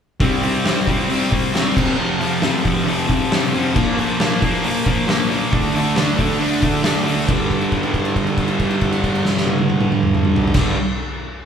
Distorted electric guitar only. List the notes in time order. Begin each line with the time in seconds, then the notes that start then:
0.20 C3 G3 C4
0.42 C3 G3 C4
0.65 C3 G3 C4
0.87 C3 G3 C4
1.09 C3 G3 C4
1.31 C3 G3 C4
1.54 C3 G3 C4
1.75 F2 C3 F3
1.97 F2 C3 F3
2.19 F2 C3 F3
2.43 F2 C3 F3
2.64 F2 C3 F3
2.85 F2 C3 F3
3.07 F2 C3 F3
3.30 F2 C3 F3
3.53 F2 C3 F3
3.74 A#2 F3 A#3
3.97 A#2 F3 A#3
4.19 A#2 F3 A#3
4.41 A#2 F3 A#3
4.63 A#2 F3 A#3
4.85 A#2 F3 A#3
5.07 A#2 F3 A#3
5.29 A#2 F3 A#3
5.51 D3 A3 D4
5.74 D3 A3 D4
5.96 D3 A3 D4
6.18 D3 A3 D4
6.39 D3 A3 D4
6.61 D3 A3 D4
6.83 D3 A3 D4
7.04 D3 A3 D4
7.26 G2 D3
7.30 G3
10.54 G2 D3 G3